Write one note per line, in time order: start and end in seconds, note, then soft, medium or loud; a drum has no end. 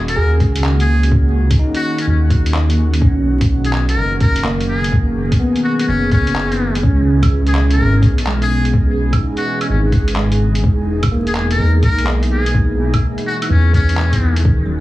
0.00 0.15 D#1 loud
0.00 6.78 D#3 medium
0.00 2.98 A#3 medium
0.00 2.98 C#4 medium
0.00 0.63 F#4 medium
0.00 4.88 F#4 medium
0.08 0.33 A#4 medium
0.08 closed hi-hat medium
0.16 0.42 D#2 medium
0.16 1.22 G#4 medium
0.40 1.58 C#2 loud
0.40 kick medium
0.40 closed hi-hat soft
0.56 closed hi-hat medium
0.64 1.70 F#4 medium
0.64 clap loud
0.80 1.05 G#4 medium
0.80 closed hi-hat soft
1.03 closed hi-hat medium
1.12 kick loud
1.51 kick loud
1.51 closed hi-hat medium
1.59 2.65 D#4 medium
1.75 1.96 F#4 medium
1.75 closed hi-hat soft
1.98 2.05 C#4 medium
1.98 closed hi-hat medium
2.07 3.01 D#2 medium
2.07 2.18 C#4 medium
2.30 kick loud
2.30 closed hi-hat soft
2.46 closed hi-hat medium
2.54 clap loud
2.70 closed hi-hat soft
2.93 closed hi-hat medium
3.01 3.96 B1 medium
3.01 14.40 B2 medium
3.01 6.79 F#3 medium
3.01 4.08 C#4 medium
3.01 kick loud
3.41 kick loud
3.41 closed hi-hat medium
3.65 3.71 G#4 medium
3.65 closed hi-hat soft
3.73 3.84 G#4 medium
3.73 clap loud
3.89 4.14 A#4 medium
3.89 closed hi-hat medium
3.97 4.20 F#1 medium
4.20 5.39 F#1 medium
4.20 4.47 A#4 medium
4.20 kick loud
4.20 closed hi-hat soft
4.36 closed hi-hat medium
4.44 5.51 A#3 medium
4.44 clap loud
4.60 closed hi-hat soft
4.68 4.94 G#4 medium
4.84 closed hi-hat medium
4.91 6.81 G#4 medium
4.91 kick loud
5.32 kick loud
5.32 closed hi-hat medium
5.40 6.46 B3 medium
5.56 closed hi-hat soft
5.64 5.74 F#4 medium
5.79 5.85 F#4 medium
5.79 closed hi-hat medium
5.88 6.82 F#1 medium
5.88 6.10 C#4 medium
6.11 6.80 C#4 medium
6.11 kick loud
6.11 closed hi-hat soft
6.27 closed hi-hat medium
6.35 clap loud
6.52 closed hi-hat soft
6.75 closed hi-hat soft
6.83 7.78 C#2 loud
6.83 10.61 E3 medium
6.83 8.72 C#4 medium
6.83 7.89 C#4 medium
6.83 14.41 G#4 medium
6.83 kick loud
7.23 kick loud
7.23 closed hi-hat soft
7.23 claves soft
7.47 7.52 G#4 medium
7.47 closed hi-hat soft
7.55 7.65 G#4 medium
7.55 clap loud
7.71 7.96 A#4 medium
7.71 closed hi-hat medium
7.79 8.04 G#1 medium
8.02 9.20 B1 loud
8.02 kick loud
8.02 closed hi-hat soft
8.18 closed hi-hat soft
8.26 9.32 G#3 soft
8.26 clap loud
8.42 8.67 G#4 medium
8.42 closed hi-hat soft
8.65 closed hi-hat medium
8.74 14.41 D#4 medium
8.74 kick loud
9.13 kick medium
9.13 closed hi-hat soft
9.13 claves medium
9.37 9.58 F#4 medium
9.37 closed hi-hat soft
9.61 9.66 C#4 medium
9.61 closed hi-hat medium
9.61 claves soft
9.69 10.63 G#1 medium
9.69 9.79 C#4 medium
9.92 kick loud
9.92 closed hi-hat soft
10.08 closed hi-hat soft
10.16 10.84 G#3 medium
10.16 clap loud
10.32 closed hi-hat soft
10.55 closed hi-hat medium
10.62 11.58 E1 loud
10.62 14.40 E3 medium
10.62 kick loud
11.03 kick loud
11.03 closed hi-hat medium
11.03 claves medium
11.12 12.18 A#3 medium
11.27 11.33 G#4 medium
11.27 closed hi-hat soft
11.35 11.45 G#4 medium
11.35 clap loud
11.51 11.76 A#4 medium
11.51 closed hi-hat medium
11.59 11.84 E2 medium
11.83 13.01 B1 medium
11.83 12.09 A#4 medium
11.83 kick loud
11.83 closed hi-hat soft
11.98 closed hi-hat medium
12.06 clap loud
12.23 closed hi-hat soft
12.31 12.56 G#4 medium
12.46 closed hi-hat medium
12.54 kick loud
12.94 kick loud
12.94 closed hi-hat medium
12.94 claves medium
13.18 closed hi-hat soft
13.27 13.36 F#4 medium
13.42 13.47 F#4 medium
13.42 closed hi-hat medium
13.42 claves soft
13.49 14.44 E2 medium
13.49 14.55 E3 medium
13.49 13.72 C#4 medium
13.73 14.42 C#4 medium
13.73 kick loud
13.73 closed hi-hat soft
13.89 closed hi-hat medium
13.97 clap loud
14.13 kick medium
14.13 closed hi-hat soft
14.36 closed hi-hat medium
14.45 14.80 D#1 loud
14.45 14.80 D#3 medium
14.45 14.80 A#3 medium
14.45 14.80 C#4 medium
14.45 14.80 F#4 medium
14.45 kick loud
14.66 14.80 F#3 medium